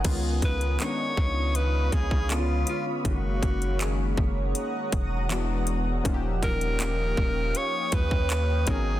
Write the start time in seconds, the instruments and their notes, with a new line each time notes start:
0.04 808-style bass C#2, synth keys D#3 G#3 B3 C#4, ambient pad C#5 F5 B5 D#6, kick, closed hi-hat, crash
0.08 synth keys F4
0.42 808-style bass C#2, alto saxophone B4, kick, closed hi-hat
0.61 closed hi-hat
0.79 synth keys D#3 G#3 B3 C#4, alto saxophone C#5, clap, closed hi-hat
0.83 synth keys D4
0.89 synth keys D#4
1.17 808-style bass C#2, kick
1.55 alto saxophone B4, closed hi-hat
1.92 808-style bass C#2, alto saxophone G#4, kick, closed hi-hat
2.11 kick
2.29 synth keys D3 G#3 B3 C#4, alto saxophone F4, clap, closed hi-hat
2.33 synth keys D4
2.40 synth keys F4
2.67 alto saxophone F4, closed hi-hat
3.04 808-style bass F#1, synth keys D#3 G#3 A3 C#4, alto saxophone F#4, ambient pad F#5 A#5 D#6, kick, closed hi-hat
3.08 synth keys F#4
3.12 synth keys A#3
3.43 808-style bass F#1, kick, closed hi-hat
3.62 closed hi-hat
3.79 synth keys D#3 G#3 A#3 C#4 G#4, clap, closed hi-hat
4.18 808-style bass F#1, kick
4.55 closed hi-hat
4.92 808-style bass E1, kick, closed hi-hat
5.29 synth keys E3 G3 B3 D4 F#4, clap, closed hi-hat
5.36 synth keys G#3
5.67 closed hi-hat
6.04 808-style bass D#1, synth keys F3 A#3 C#4 D#4, ambient pad C#5 F5 G5 D#6, kick, closed hi-hat
6.08 synth keys F4
6.14 synth keys G4
6.43 808-style bass D#1, alto saxophone A#4, kick, closed hi-hat
6.61 closed hi-hat
6.79 synth keys F3 A#3 C#4 D#4, clap, closed hi-hat
6.83 synth keys G4
7.17 808-style bass D#1, kick
7.55 alto saxophone C#5, closed hi-hat
7.92 808-style bass D#2, alto saxophone B4, kick, closed hi-hat
8.11 kick
8.30 clap, closed hi-hat
8.66 808-style bass G#1, synth keys F#3 B3 C#4 D#4, ambient pad B3 F#5 A#5 C#6, alto saxophone G#4, kick, closed hi-hat
8.70 synth keys A#4